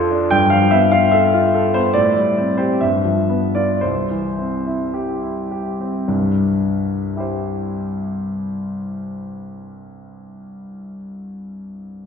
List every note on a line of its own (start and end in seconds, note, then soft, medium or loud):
0.00 0.27 F2 medium
0.00 0.34 F3 soft
0.00 0.11 D4 soft
0.00 0.34 F4 medium
0.00 0.34 A4 soft
0.00 0.31 C5 medium
0.11 0.31 D4 soft
0.31 1.91 G2 medium
0.31 0.51 G5 medium
0.50 0.84 F3 soft
0.50 0.71 F5 medium
0.71 1.05 B3 soft
0.71 0.92 E5 medium
0.92 1.25 F4 soft
0.92 1.13 F5 medium
1.11 1.46 A4 soft
1.11 1.74 E5 medium
1.34 1.67 F4 soft
1.55 1.87 A4 soft
1.74 1.95 B3 soft
1.74 1.95 C5 medium
1.93 2.78 A2 medium
1.93 2.57 D5 medium
2.15 2.49 G3 soft
2.38 2.72 C4 soft
2.57 2.81 G4 soft
2.57 2.80 C5 medium
2.81 3.80 G2 soft
2.81 3.55 E5 medium
3.05 3.45 F3 soft
3.29 3.71 B3 soft
3.55 3.83 F4 soft
3.55 3.82 D5 medium
3.81 6.03 C2 soft
3.81 5.50 C5 medium
4.11 4.55 E3 soft
4.39 4.83 C4 soft
4.67 5.11 E4 soft
4.94 5.39 G4 soft
5.23 5.69 E4 soft
5.51 5.96 G4 soft
5.80 6.07 C4 soft
6.08 9.85 C2 soft
6.08 9.85 G2 soft
7.16 10.92 E4 soft
7.16 10.94 G4 soft
7.20 10.96 C5 soft